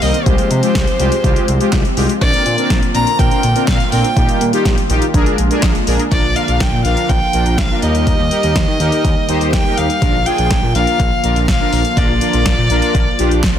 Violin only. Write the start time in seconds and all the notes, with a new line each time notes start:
0.02 D#5
0.26 C5
2.21 D5
2.95 A#5
3.19 G5
3.68 F5
3.92 G5
6.12 D5
6.36 F5
6.60 G5
6.85 F5
7.09 G5
7.58 F5
7.82 D#5
9.53 G5
9.78 F5
10.27 G5
10.75 F5
11.48 F5
11.97 D5